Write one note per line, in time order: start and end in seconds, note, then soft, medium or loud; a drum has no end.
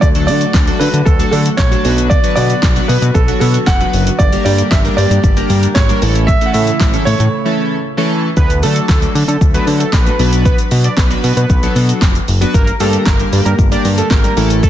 0.00 0.30 D2 loud
0.00 4.16 D3 medium
0.00 1.81 A3 medium
0.00 1.83 F#4 medium
0.00 0.07 D5 loud
0.00 kick loud
0.00 shaker medium
0.15 0.47 F#3 medium
0.15 0.47 A3 medium
0.15 0.47 D4 medium
0.15 0.47 F#4 medium
0.15 0.47 A4 medium
0.15 closed hi-hat medium
0.15 shaker medium
0.27 0.45 D3 loud
0.27 0.81 D5 loud
0.27 open hi-hat medium
0.27 shaker medium
0.41 closed hi-hat medium
0.41 shaker medium
0.54 0.71 D2 loud
0.54 kick loud
0.54 snare loud
0.54 clap loud
0.54 shaker medium
0.67 0.99 F#3 medium
0.67 0.99 A3 medium
0.67 0.99 D4 medium
0.67 0.99 F#4 medium
0.67 0.99 A4 medium
0.67 closed hi-hat medium
0.67 shaker medium
0.79 0.89 D3 loud
0.79 1.07 B4 medium
0.79 open hi-hat medium
0.79 shaker medium
0.93 1.02 D3 loud
0.93 closed hi-hat medium
0.93 shaker medium
1.05 1.23 D2 loud
1.05 1.30 A4 medium
1.05 kick loud
1.05 shaker medium
1.19 1.51 F#3 medium
1.19 1.51 A3 medium
1.19 1.51 D4 medium
1.19 1.51 F#4 medium
1.19 1.51 A4 medium
1.19 closed hi-hat medium
1.19 shaker medium
1.31 1.50 D3 loud
1.31 1.37 A4 medium
1.31 open hi-hat medium
1.31 shaker medium
1.46 closed hi-hat medium
1.46 shaker medium
1.57 1.75 A#1 loud
1.57 2.12 C#5 loud
1.57 kick loud
1.57 snare medium
1.57 clap loud
1.57 shaker medium
1.71 1.83 F#3 medium
1.71 1.84 A3 medium
1.71 1.84 D4 medium
1.71 1.84 F#4 medium
1.71 1.85 A4 medium
1.71 closed hi-hat medium
1.71 shaker medium
1.85 2.19 B1 loud
1.85 2.16 F#3 medium
1.85 2.16 B3 medium
1.85 4.17 B3 medium
1.85 2.16 D4 medium
1.85 4.17 F#4 medium
1.85 2.16 F#4 medium
1.85 2.16 B4 medium
1.85 open hi-hat medium
1.85 shaker medium
1.98 closed hi-hat medium
1.98 shaker medium
2.10 2.34 D5 loud
2.10 kick loud
2.10 shaker medium
2.24 2.55 F#3 medium
2.24 2.55 B3 medium
2.24 2.55 D4 medium
2.24 2.55 F#4 medium
2.24 2.55 B4 medium
2.24 closed hi-hat medium
2.24 shaker medium
2.35 2.54 B2 loud
2.35 2.85 D5 loud
2.35 open hi-hat medium
2.35 shaker medium
2.50 closed hi-hat medium
2.50 shaker medium
2.62 2.80 B1 loud
2.62 kick loud
2.62 snare loud
2.62 clap loud
2.62 shaker medium
2.76 3.07 F#3 medium
2.76 3.07 B3 medium
2.76 3.08 D4 medium
2.76 3.08 F#4 medium
2.76 3.08 B4 medium
2.76 closed hi-hat medium
2.76 shaker medium
2.88 2.98 B2 loud
2.88 3.15 B4 medium
2.88 open hi-hat medium
2.88 shaker medium
3.02 3.11 B2 loud
3.02 closed hi-hat medium
3.02 shaker medium
3.14 3.32 B1 loud
3.14 3.39 A4 loud
3.14 kick loud
3.14 shaker medium
3.28 3.60 F#3 medium
3.28 3.60 B3 medium
3.28 3.60 D4 medium
3.28 3.60 F#4 medium
3.28 3.60 C#5 medium
3.28 closed hi-hat medium
3.28 shaker medium
3.40 3.58 B2 loud
3.40 3.65 A4 medium
3.40 open hi-hat medium
3.40 shaker medium
3.54 closed hi-hat medium
3.54 shaker medium
3.67 3.84 F1 loud
3.67 4.21 F#5 loud
3.67 kick loud
3.67 snare medium
3.67 clap loud
3.67 shaker medium
3.80 4.12 F#3 medium
3.80 4.12 B3 medium
3.80 4.12 D4 medium
3.80 4.12 F#4 medium
3.80 4.12 B4 medium
3.80 closed hi-hat medium
3.80 shaker medium
3.93 4.10 F#1 medium
3.93 open hi-hat medium
3.93 shaker medium
4.07 closed hi-hat medium
4.07 shaker medium
4.19 4.36 G1 loud
4.19 6.00 D3 medium
4.19 6.00 A#3 medium
4.19 6.00 G4 medium
4.19 4.43 D5 loud
4.19 kick loud
4.19 shaker medium
4.32 4.64 G3 medium
4.32 4.64 A#3 medium
4.32 4.64 D4 medium
4.32 4.64 G4 medium
4.32 4.64 A#4 medium
4.32 closed hi-hat medium
4.32 shaker medium
4.45 4.62 G2 loud
4.45 4.72 D5 loud
4.45 open hi-hat medium
4.45 shaker medium
4.58 closed hi-hat medium
4.58 shaker medium
4.71 4.89 G1 loud
4.71 4.77 E5 loud
4.71 kick loud
4.71 snare loud
4.71 clap loud
4.71 shaker medium
4.84 5.16 G3 medium
4.84 5.16 A#3 medium
4.84 5.16 D4 medium
4.84 5.16 G4 medium
4.84 5.16 A#4 medium
4.84 closed hi-hat medium
4.84 shaker medium
4.97 5.06 G2 loud
4.97 5.72 D5 loud
4.97 open hi-hat medium
4.97 shaker medium
5.11 5.19 G2 loud
5.11 closed hi-hat medium
5.11 shaker medium
5.24 5.41 G1 loud
5.24 kick loud
5.24 shaker medium
5.36 5.68 G3 medium
5.36 5.68 A#3 medium
5.36 5.68 D4 medium
5.36 5.68 G4 medium
5.36 5.69 A#4 medium
5.36 closed hi-hat medium
5.36 shaker medium
5.50 5.67 G2 loud
5.50 open hi-hat medium
5.50 shaker medium
5.63 closed hi-hat medium
5.63 shaker medium
5.75 5.93 G#1 medium
5.75 6.29 C#5 loud
5.75 kick loud
5.75 snare loud
5.75 clap loud
5.75 shaker medium
5.89 6.02 G3 medium
5.89 6.02 A#3 medium
5.89 6.02 D4 medium
5.89 6.02 G4 medium
5.89 6.02 A#4 medium
5.89 closed hi-hat medium
5.89 shaker medium
6.02 6.36 A1 loud
6.02 8.35 C#3 medium
6.02 6.33 E3 medium
6.02 6.33 A3 medium
6.02 8.35 A3 medium
6.02 6.33 C#4 medium
6.02 6.34 E4 medium
6.02 8.35 E4 medium
6.02 6.34 A4 medium
6.02 open hi-hat medium
6.02 shaker medium
6.15 closed hi-hat medium
6.15 shaker medium
6.27 6.47 E5 loud
6.27 kick loud
6.27 shaker medium
6.41 6.73 E3 medium
6.41 6.73 A3 medium
6.41 6.73 C#4 medium
6.41 6.73 E4 medium
6.41 6.73 A4 medium
6.41 closed hi-hat medium
6.41 shaker medium
6.46 6.54 F#5 medium
6.53 6.71 A2 loud
6.53 7.08 E5 loud
6.53 open hi-hat medium
6.53 shaker medium
6.67 closed hi-hat medium
6.67 shaker medium
6.80 6.97 A1 loud
6.80 kick loud
6.80 snare medium
6.80 clap loud
6.80 shaker medium
6.93 7.25 E3 medium
6.93 7.25 A3 medium
6.93 7.25 C#4 medium
6.93 7.25 E4 medium
6.93 7.25 A4 medium
6.93 closed hi-hat medium
6.93 shaker medium
7.05 7.15 A2 loud
7.05 7.80 C#5 loud
7.05 open hi-hat medium
7.05 shaker medium
7.20 7.28 A2 loud
7.20 closed hi-hat medium
7.20 shaker medium
7.45 7.77 E3 medium
7.45 7.77 A3 medium
7.45 7.77 C#4 medium
7.45 7.77 E4 medium
7.45 7.77 A4 medium
7.97 8.29 E3 medium
7.97 8.29 A3 medium
7.97 8.29 C#4 medium
7.97 8.29 E4 medium
7.97 8.29 A4 loud
8.37 8.65 D2 loud
8.37 8.58 B4 loud
8.37 kick loud
8.37 shaker medium
8.50 closed hi-hat medium
8.50 shaker medium
8.63 8.80 D3 medium
8.63 8.86 F#3 medium
8.63 8.86 A3 medium
8.63 8.87 D4 medium
8.63 8.87 F#4 medium
8.63 8.87 A4 medium
8.63 8.84 A4 medium
8.63 open hi-hat medium
8.63 shaker medium
8.76 closed hi-hat medium
8.76 shaker medium
8.89 9.06 D2 loud
8.89 8.99 A4 medium
8.89 kick loud
8.89 snare loud
8.89 clap loud
8.89 shaker medium
9.02 9.33 F#3 medium
9.02 9.33 A3 medium
9.02 9.33 D4 medium
9.02 9.34 F#4 medium
9.02 9.34 A4 medium
9.02 closed hi-hat medium
9.02 shaker medium
9.15 9.24 D3 loud
9.15 open hi-hat medium
9.15 shaker medium
9.28 9.37 D3 loud
9.28 9.39 A4 medium
9.28 closed hi-hat medium
9.28 shaker medium
9.41 9.58 D2 loud
9.41 kick loud
9.41 shaker medium
9.54 9.86 F#3 medium
9.54 9.86 A3 medium
9.54 9.86 D4 medium
9.54 9.86 F#4 medium
9.54 9.86 A4 loud
9.54 9.65 B4 medium
9.54 closed hi-hat medium
9.54 shaker medium
9.67 9.84 D3 loud
9.67 open hi-hat medium
9.67 shaker medium
9.80 9.90 A4 medium
9.80 closed hi-hat medium
9.80 shaker medium
9.93 10.10 A#1 medium
9.93 10.30 B4 medium
9.93 kick loud
9.93 snare medium
9.93 clap loud
9.93 shaker medium
10.06 10.14 F#3 medium
10.06 10.14 A3 medium
10.06 10.14 D4 medium
10.06 10.14 F#4 medium
10.06 10.14 A4 medium
10.06 closed hi-hat medium
10.06 shaker medium
10.19 10.53 B1 loud
10.19 10.92 F#3 medium
10.19 10.93 B3 medium
10.19 10.93 D4 medium
10.19 10.93 F#4 medium
10.19 10.93 B4 medium
10.19 open hi-hat medium
10.19 shaker medium
10.33 closed hi-hat medium
10.33 shaker medium
10.45 10.56 B4 loud
10.45 kick loud
10.45 shaker medium
10.58 closed hi-hat medium
10.58 shaker medium
10.71 10.89 B2 loud
10.71 open hi-hat medium
10.71 shaker medium
10.84 10.95 D5 medium
10.84 closed hi-hat medium
10.84 shaker medium
10.97 11.15 B1 loud
10.97 11.08 B4 medium
10.97 kick loud
10.97 snare loud
10.97 clap loud
10.97 shaker medium
11.10 11.42 F#3 medium
11.10 11.42 B3 medium
11.10 11.42 D4 medium
11.10 11.42 F#4 medium
11.10 11.42 B4 medium
11.10 closed hi-hat medium
11.10 shaker medium
11.24 11.32 B2 loud
11.24 open hi-hat medium
11.24 shaker medium
11.37 11.45 B2 loud
11.37 11.74 B4 medium
11.37 closed hi-hat medium
11.37 shaker medium
11.50 11.67 B1 loud
11.50 kick loud
11.50 shaker medium
11.63 12.10 F#3 medium
11.63 12.10 B3 medium
11.63 12.10 D4 medium
11.63 12.10 F#4 medium
11.63 12.10 A4 medium
11.63 closed hi-hat medium
11.63 shaker medium
11.76 11.93 B2 loud
11.76 open hi-hat medium
11.76 shaker medium
11.89 closed hi-hat medium
11.89 shaker medium
12.02 12.19 F1 loud
12.02 kick loud
12.02 snare medium
12.02 clap loud
12.02 shaker medium
12.15 closed hi-hat medium
12.15 shaker medium
12.28 12.45 F#1 medium
12.28 open hi-hat medium
12.28 shaker medium
12.41 12.54 F#3 medium
12.41 12.54 B3 medium
12.41 12.54 D4 medium
12.41 12.54 F#4 medium
12.41 12.54 B4 medium
12.41 closed hi-hat medium
12.41 shaker medium
12.54 12.71 G1 loud
12.54 14.35 D3 medium
12.54 14.35 A#3 medium
12.54 14.35 G4 medium
12.54 12.75 A#4 loud
12.54 kick loud
12.54 shaker medium
12.67 closed hi-hat medium
12.67 shaker medium
12.80 12.97 G2 loud
12.80 13.04 G3 medium
12.80 13.04 A#3 medium
12.80 13.04 D4 medium
12.80 13.04 G4 medium
12.80 13.01 A4 medium
12.80 13.04 A#4 medium
12.80 open hi-hat medium
12.80 shaker medium
12.93 closed hi-hat medium
12.93 shaker medium
13.06 13.24 G1 loud
13.06 13.16 A#4 medium
13.06 kick loud
13.06 snare loud
13.06 clap loud
13.06 shaker medium
13.19 13.51 G3 medium
13.19 13.51 A#3 medium
13.19 13.51 D4 medium
13.19 13.51 G4 medium
13.19 13.51 A#4 medium
13.19 closed hi-hat medium
13.19 shaker medium
13.33 13.41 G2 loud
13.33 open hi-hat medium
13.33 shaker medium
13.45 13.54 G2 loud
13.45 13.56 A#4 medium
13.45 closed hi-hat medium
13.45 shaker medium
13.59 13.76 G1 loud
13.59 kick loud
13.59 shaker medium
13.71 14.03 G3 medium
13.71 14.03 A#3 medium
13.71 14.03 D4 medium
13.71 14.03 G4 medium
13.71 14.03 A#4 medium
13.71 13.82 D5 medium
13.71 closed hi-hat medium
13.71 shaker medium
13.85 14.02 G2 loud
13.85 open hi-hat medium
13.85 shaker medium
13.98 14.08 A4 medium
13.98 closed hi-hat medium
13.98 shaker medium
14.10 14.28 G#1 loud
14.10 14.48 A#4 medium
14.10 kick loud
14.10 snare medium
14.10 clap loud
14.10 shaker medium
14.24 14.32 G3 medium
14.24 14.32 A#3 medium
14.24 14.32 D4 medium
14.24 14.32 G4 medium
14.24 14.32 A#4 medium
14.24 closed hi-hat medium
14.24 shaker medium
14.37 14.70 A1 loud
14.37 14.70 C#3 medium
14.37 14.70 E3 medium
14.37 14.70 A3 medium
14.37 14.70 C#4 medium
14.37 14.70 E4 medium
14.37 14.70 A4 medium
14.37 open hi-hat medium
14.37 shaker medium
14.50 closed hi-hat medium
14.50 shaker medium
14.63 14.70 A4 loud
14.63 kick loud
14.63 shaker medium